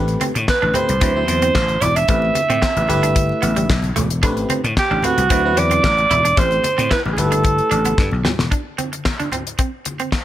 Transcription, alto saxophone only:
0, 0, Header, 1, 2, 480
1, 0, Start_track
1, 0, Tempo, 535714
1, 1871, Time_signature, 4, 2, 24, 8
1, 9180, End_track
2, 0, Start_track
2, 0, Title_t, "Alto saxophone"
2, 0, Program_c, 0, 65
2, 444, Note_on_c, 0, 71, 96
2, 678, Note_on_c, 0, 72, 100
2, 691, Note_off_c, 0, 71, 0
2, 1629, Note_on_c, 0, 74, 98
2, 1643, Note_off_c, 0, 72, 0
2, 1759, Note_on_c, 0, 76, 98
2, 1773, Note_off_c, 0, 74, 0
2, 3551, Note_off_c, 0, 76, 0
2, 4291, Note_on_c, 0, 67, 96
2, 4524, Note_on_c, 0, 66, 104
2, 4538, Note_off_c, 0, 67, 0
2, 5003, Note_on_c, 0, 74, 127
2, 5016, Note_off_c, 0, 66, 0
2, 5724, Note_on_c, 0, 72, 111
2, 5737, Note_off_c, 0, 74, 0
2, 6197, Note_off_c, 0, 72, 0
2, 6205, Note_on_c, 0, 71, 92
2, 6283, Note_off_c, 0, 71, 0
2, 6384, Note_on_c, 0, 68, 66
2, 6444, Note_on_c, 0, 69, 98
2, 6458, Note_off_c, 0, 68, 0
2, 7397, Note_off_c, 0, 69, 0
2, 9180, End_track
0, 0, End_of_file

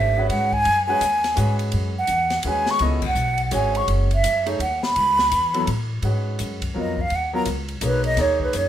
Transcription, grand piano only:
0, 0, Header, 1, 2, 480
1, 0, Start_track
1, 0, Tempo, 358209
1, 886, Time_signature, 3, 2, 24, 8
1, 11639, End_track
2, 0, Start_track
2, 0, Title_t, "Grand piano"
2, 0, Program_c, 0, 0
2, 0, Note_on_c, 0, 57, 58
2, 0, Note_on_c, 0, 62, 45
2, 0, Note_on_c, 0, 67, 50
2, 0, Note_on_c, 0, 72, 57
2, 197, Note_off_c, 0, 57, 0
2, 198, Note_off_c, 0, 62, 0
2, 207, Note_off_c, 0, 67, 0
2, 207, Note_off_c, 0, 72, 0
2, 230, Note_on_c, 0, 56, 58
2, 239, Note_on_c, 0, 61, 62
2, 245, Note_on_c, 0, 66, 60
2, 259, Note_on_c, 0, 71, 66
2, 650, Note_off_c, 0, 56, 0
2, 654, Note_off_c, 0, 61, 0
2, 657, Note_off_c, 0, 66, 0
2, 664, Note_off_c, 0, 71, 0
2, 1172, Note_on_c, 0, 56, 68
2, 1185, Note_on_c, 0, 61, 66
2, 1189, Note_on_c, 0, 66, 57
2, 1200, Note_on_c, 0, 71, 77
2, 1338, Note_off_c, 0, 56, 0
2, 1345, Note_off_c, 0, 61, 0
2, 1347, Note_off_c, 0, 66, 0
2, 1353, Note_off_c, 0, 71, 0
2, 1820, Note_on_c, 0, 56, 63
2, 1827, Note_on_c, 0, 61, 52
2, 1830, Note_on_c, 0, 66, 48
2, 1840, Note_on_c, 0, 71, 63
2, 2557, Note_off_c, 0, 56, 0
2, 2560, Note_off_c, 0, 61, 0
2, 2562, Note_off_c, 0, 66, 0
2, 2567, Note_off_c, 0, 71, 0
2, 3288, Note_on_c, 0, 56, 58
2, 3293, Note_on_c, 0, 61, 54
2, 3304, Note_on_c, 0, 66, 50
2, 3310, Note_on_c, 0, 71, 68
2, 3761, Note_on_c, 0, 59, 68
2, 3767, Note_on_c, 0, 64, 58
2, 3770, Note_on_c, 0, 69, 63
2, 3785, Note_on_c, 0, 75, 78
2, 4011, Note_off_c, 0, 56, 0
2, 4013, Note_off_c, 0, 61, 0
2, 4019, Note_off_c, 0, 66, 0
2, 4022, Note_off_c, 0, 71, 0
2, 4038, Note_off_c, 0, 59, 0
2, 4041, Note_off_c, 0, 64, 0
2, 4043, Note_off_c, 0, 69, 0
2, 4050, Note_off_c, 0, 75, 0
2, 4706, Note_on_c, 0, 56, 61
2, 4711, Note_on_c, 0, 61, 60
2, 4725, Note_on_c, 0, 66, 59
2, 4729, Note_on_c, 0, 73, 72
2, 5439, Note_off_c, 0, 56, 0
2, 5441, Note_off_c, 0, 61, 0
2, 5449, Note_off_c, 0, 66, 0
2, 5451, Note_off_c, 0, 73, 0
2, 5977, Note_on_c, 0, 57, 65
2, 5984, Note_on_c, 0, 63, 61
2, 5985, Note_on_c, 0, 68, 65
2, 5994, Note_on_c, 0, 73, 77
2, 6140, Note_off_c, 0, 57, 0
2, 6143, Note_off_c, 0, 63, 0
2, 6144, Note_off_c, 0, 68, 0
2, 6149, Note_off_c, 0, 73, 0
2, 7422, Note_on_c, 0, 54, 69
2, 7436, Note_on_c, 0, 59, 59
2, 7438, Note_on_c, 0, 64, 65
2, 7438, Note_on_c, 0, 69, 76
2, 7582, Note_off_c, 0, 54, 0
2, 7589, Note_off_c, 0, 59, 0
2, 7590, Note_off_c, 0, 64, 0
2, 7590, Note_off_c, 0, 69, 0
2, 8085, Note_on_c, 0, 56, 54
2, 8086, Note_on_c, 0, 61, 41
2, 8100, Note_on_c, 0, 66, 41
2, 8107, Note_on_c, 0, 71, 53
2, 8808, Note_off_c, 0, 56, 0
2, 8808, Note_off_c, 0, 61, 0
2, 8815, Note_off_c, 0, 66, 0
2, 8819, Note_off_c, 0, 71, 0
2, 9036, Note_on_c, 0, 54, 52
2, 9050, Note_on_c, 0, 65, 50
2, 9052, Note_on_c, 0, 59, 48
2, 9063, Note_on_c, 0, 70, 55
2, 9314, Note_off_c, 0, 54, 0
2, 9321, Note_off_c, 0, 65, 0
2, 9322, Note_off_c, 0, 59, 0
2, 9327, Note_off_c, 0, 70, 0
2, 9827, Note_on_c, 0, 54, 70
2, 9831, Note_on_c, 0, 59, 65
2, 9846, Note_on_c, 0, 70, 74
2, 9847, Note_on_c, 0, 65, 61
2, 9984, Note_off_c, 0, 54, 0
2, 9986, Note_off_c, 0, 59, 0
2, 9993, Note_off_c, 0, 70, 0
2, 9994, Note_off_c, 0, 65, 0
2, 10478, Note_on_c, 0, 58, 56
2, 10485, Note_on_c, 0, 63, 45
2, 10489, Note_on_c, 0, 68, 43
2, 10496, Note_on_c, 0, 73, 58
2, 10943, Note_off_c, 0, 58, 0
2, 10951, Note_off_c, 0, 63, 0
2, 10954, Note_off_c, 0, 68, 0
2, 10963, Note_off_c, 0, 73, 0
2, 10963, Note_on_c, 0, 58, 62
2, 10971, Note_on_c, 0, 63, 65
2, 10974, Note_on_c, 0, 68, 56
2, 10983, Note_on_c, 0, 73, 68
2, 11639, Note_off_c, 0, 58, 0
2, 11639, Note_off_c, 0, 63, 0
2, 11639, Note_off_c, 0, 68, 0
2, 11639, Note_off_c, 0, 73, 0
2, 11639, End_track
0, 0, End_of_file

